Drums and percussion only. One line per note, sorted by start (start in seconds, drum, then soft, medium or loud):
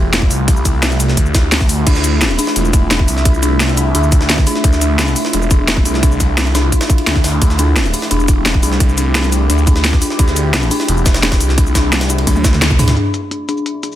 0.13 snare loud
0.13 closed hi-hat medium
0.13 ride medium
0.22 kick loud
0.31 open hi-hat medium
0.31 cabasa medium
0.48 kick loud
0.48 closed hi-hat medium
0.48 ride medium
0.57 cabasa soft
0.65 kick medium
0.65 closed hi-hat medium
0.65 ride medium
0.65 cabasa medium
0.83 snare loud
0.83 closed hi-hat loud
0.83 ride medium
0.91 cabasa soft
1.00 closed hi-hat medium
1.00 ride medium
1.00 cabasa medium
1.09 snare soft
1.17 kick medium
1.17 closed hi-hat medium
1.17 ride medium
1.26 cabasa soft
1.35 kick loud
1.35 snare loud
1.35 closed hi-hat medium
1.35 ride medium
1.35 cabasa medium
1.52 snare loud
1.52 closed hi-hat loud
1.52 open hi-hat medium
1.61 kick loud
1.61 snare soft
1.61 cabasa soft
1.69 open hi-hat medium
1.69 ride medium
1.69 cabasa medium
1.87 kick loud
1.87 closed hi-hat loud
1.87 ride medium
1.87 crash medium
1.95 snare soft
1.95 cabasa soft
2.04 closed hi-hat medium
2.04 ride medium
2.04 cabasa medium
2.21 snare loud
2.21 closed hi-hat loud
2.21 ride medium
2.30 cabasa soft
2.39 closed hi-hat medium
2.39 open hi-hat medium
2.39 cabasa medium
2.47 snare medium
2.56 closed hi-hat loud
2.56 ride medium
2.65 cabasa soft
2.73 kick loud
2.73 closed hi-hat medium
2.73 ride medium
2.73 cabasa medium
2.91 snare loud
2.91 closed hi-hat loud
2.91 ride medium
2.99 kick loud
3.08 open hi-hat medium
3.08 ride medium
3.08 cabasa medium
3.17 snare soft
3.25 kick loud
3.25 closed hi-hat loud
3.25 ride medium
3.34 cabasa soft
3.43 closed hi-hat medium
3.43 ride medium
3.43 cabasa medium
3.60 snare loud
3.60 closed hi-hat loud
3.60 ride medium
3.69 cabasa soft
3.77 closed hi-hat medium
3.77 ride medium
3.77 cabasa medium
3.95 closed hi-hat loud
3.95 ride medium
4.03 cabasa soft
4.12 kick loud
4.12 closed hi-hat medium
4.12 ride medium
4.12 cabasa medium
4.21 snare medium
4.29 snare loud
4.29 closed hi-hat loud
4.29 ride medium
4.38 kick loud
4.38 snare medium
4.47 open hi-hat medium
4.47 ride medium
4.47 cabasa medium
4.55 snare soft
4.64 kick loud
4.64 closed hi-hat medium
4.64 ride medium
4.73 snare soft
4.73 cabasa soft
4.81 closed hi-hat medium
4.81 ride medium
4.81 cabasa medium
4.99 snare loud
4.99 closed hi-hat loud
4.99 ride medium
5.07 cabasa soft
5.16 closed hi-hat medium
5.16 open hi-hat medium
5.16 cabasa medium
5.25 snare medium
5.33 closed hi-hat loud
5.33 ride medium
5.42 cabasa soft
5.51 kick loud
5.51 closed hi-hat medium
5.51 ride medium
5.51 cabasa medium
5.68 snare loud
5.68 closed hi-hat loud
5.68 ride medium
5.77 kick loud
5.86 open hi-hat medium
5.86 ride medium
5.86 cabasa medium
5.94 snare soft
6.03 kick loud
6.03 closed hi-hat medium
6.03 ride medium
6.12 cabasa soft
6.20 kick medium
6.20 closed hi-hat medium
6.20 ride medium
6.20 cabasa medium
6.38 snare loud
6.38 closed hi-hat loud
6.38 ride medium
6.46 cabasa soft
6.55 snare loud
6.55 closed hi-hat medium
6.55 ride medium
6.55 cabasa medium
6.72 kick medium
6.72 closed hi-hat medium
6.72 ride medium
6.81 snare loud
6.81 ride medium
6.81 cabasa soft
6.90 kick loud
6.90 closed hi-hat medium
6.90 cabasa medium
6.98 ride medium
7.07 snare loud
7.07 closed hi-hat medium
7.07 ride medium
7.16 kick loud
7.16 snare medium
7.24 snare loud
7.24 open hi-hat medium
7.24 ride medium
7.24 cabasa medium
7.42 kick loud
7.42 closed hi-hat medium
7.42 ride medium
7.50 snare soft
7.50 cabasa soft
7.59 closed hi-hat medium
7.59 ride medium
7.59 cabasa medium
7.76 snare loud
7.76 closed hi-hat medium
7.76 ride medium
7.85 cabasa soft
7.94 closed hi-hat medium
7.94 open hi-hat medium
7.94 cabasa medium
8.02 snare medium
8.11 closed hi-hat medium
8.11 ride medium
8.20 cabasa soft
8.28 kick loud
8.28 closed hi-hat medium
8.28 ride medium
8.28 cabasa medium
8.46 snare loud
8.46 closed hi-hat medium
8.46 ride medium
8.54 kick loud
8.63 open hi-hat medium
8.63 ride medium
8.63 cabasa medium
8.72 snare soft
8.80 kick loud
8.80 closed hi-hat medium
8.80 ride medium
8.89 cabasa soft
8.98 closed hi-hat medium
8.98 ride medium
8.98 cabasa medium
9.15 snare loud
9.15 closed hi-hat medium
9.15 ride medium
9.24 cabasa soft
9.32 closed hi-hat medium
9.32 ride medium
9.32 cabasa medium
9.50 closed hi-hat medium
9.50 ride medium
9.58 cabasa soft
9.67 kick loud
9.67 closed hi-hat medium
9.67 ride medium
9.67 cabasa medium
9.76 snare medium
9.84 snare loud
9.84 closed hi-hat medium
9.84 ride medium
9.93 kick loud
9.93 snare medium
10.02 open hi-hat medium
10.02 ride medium
10.02 cabasa medium
10.10 snare soft
10.19 kick loud
10.19 closed hi-hat medium
10.19 ride medium
10.28 snare soft
10.28 cabasa soft
10.36 closed hi-hat medium
10.36 ride medium
10.36 cabasa medium
10.54 snare loud
10.54 closed hi-hat loud
10.54 ride medium
10.62 cabasa soft
10.71 closed hi-hat medium
10.71 open hi-hat medium
10.71 cabasa medium
10.80 snare medium
10.88 closed hi-hat medium
10.88 ride medium
10.97 cabasa soft
11.06 kick loud
11.06 snare loud
11.06 closed hi-hat medium
11.06 ride medium
11.06 cabasa medium
11.14 snare loud
11.14 ride medium
11.23 snare loud
11.23 closed hi-hat medium
11.23 ride medium
11.32 kick loud
11.32 snare loud
11.32 ride medium
11.40 open hi-hat medium
11.40 ride medium
11.40 cabasa medium
11.49 snare soft
11.58 kick loud
11.58 closed hi-hat medium
11.58 ride medium
11.67 cabasa soft
11.75 kick medium
11.75 snare loud
11.75 closed hi-hat medium
11.75 ride medium
11.75 cabasa medium
11.92 snare loud
11.92 closed hi-hat loud
11.92 ride medium
12.01 snare loud
12.01 ride medium
12.01 cabasa soft
12.10 closed hi-hat medium
12.10 cabasa medium
12.18 ride medium
12.27 kick medium
12.27 closed hi-hat medium
12.27 high tom medium
12.27 ride medium
12.36 high tom medium
12.36 cabasa soft
12.44 kick loud
12.44 snare loud
12.44 closed hi-hat medium
12.44 ride medium
12.44 cabasa medium
12.53 snare medium
12.53 mid tom medium
12.62 snare loud
12.62 closed hi-hat loud
12.62 mid tom medium
12.62 ride medium
12.70 kick loud
12.70 cabasa soft
12.79 mid tom loud
12.79 open hi-hat medium
12.79 cabasa medium
12.88 snare loud
12.88 mid tom medium
12.88 ride medium
12.97 closed hi-hat medium
13.14 closed hi-hat medium
13.14 cabasa medium
13.31 closed hi-hat medium
13.49 closed hi-hat medium
13.49 cabasa medium
13.57 cabasa soft
13.66 closed hi-hat medium
13.83 closed hi-hat medium
13.83 cabasa medium
13.92 cabasa soft